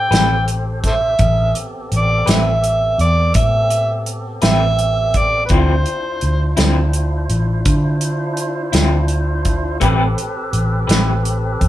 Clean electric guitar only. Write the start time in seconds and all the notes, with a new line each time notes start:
0.11 A3 C4 G4 B4
2.26 A3 C4 G4 B4
4.42 A3 C4 G4 B4
5.49 D3 F3 C4 E4
6.57 D3 F3 C4 E4
8.72 D3 F3 C4 E4
9.80 A3 C4 G4 B4
10.87 A3 C4 G4 B4